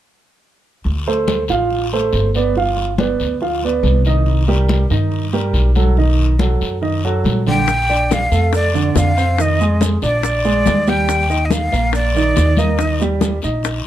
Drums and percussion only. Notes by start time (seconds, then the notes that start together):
0.84 high conga, long guiro
1.07 high conga
1.27 high conga, short guiro
1.48 high conga, short guiro
1.71 high conga, long guiro
1.92 high conga
2.13 high conga, short guiro
2.35 short guiro
2.55 high conga, long guiro
2.77 high conga
2.98 high conga, short guiro
3.20 high conga, short guiro
3.41 high conga, long guiro
3.62 high conga
3.83 high conga, short guiro
4.05 short guiro
4.26 high conga, long guiro
4.48 high conga
4.69 high conga, short guiro
4.90 high conga, short guiro
5.11 high conga, long guiro
5.33 high conga
5.54 high conga, short guiro
5.75 high conga, short guiro
5.97 high conga, long guiro
6.19 high conga
6.39 high conga, short guiro
6.61 high conga, short guiro
6.83 high conga, long guiro
7.05 high conga
7.25 high conga, short guiro
7.47 high conga, short guiro
7.68 high bongo, high conga, long guiro, maracas
7.89 high bongo, high conga, maracas
8.11 high bongo, high conga, short guiro, maracas
8.32 high bongo, high conga, short guiro, maracas
8.53 high bongo, high conga, long guiro, maracas
8.74 high bongo, high conga, maracas
8.96 high bongo, low bongo, high conga, short guiro, maracas
9.17 short guiro, maracas
9.38 high bongo, high conga, long guiro, maracas
9.60 high bongo, high conga, maracas
9.81 high bongo, high conga, short guiro, maracas
10.02 high bongo, high conga, short guiro, maracas
10.23 high bongo, high conga, long guiro, maracas
10.45 high bongo, high conga, maracas
10.66 high bongo, low bongo, high conga, short guiro, maracas
10.87 short guiro, maracas
11.08 high bongo, high conga, long guiro, maracas
11.29 high bongo, high conga, maracas
11.50 high bongo, high conga, short guiro, maracas
11.72 high bongo, high conga, short guiro, maracas
11.93 high bongo, high conga, long guiro, maracas
12.15 high bongo, high conga, maracas
12.36 high bongo, low bongo, high conga, short guiro, maracas
12.57 high conga, short guiro, maracas
12.78 high bongo, high conga, long guiro, maracas
13.00 high bongo, high conga, maracas
13.21 high bongo, high conga, short guiro, maracas
13.42 high bongo, high conga, short guiro, maracas
13.63 high bongo, high conga, long guiro, maracas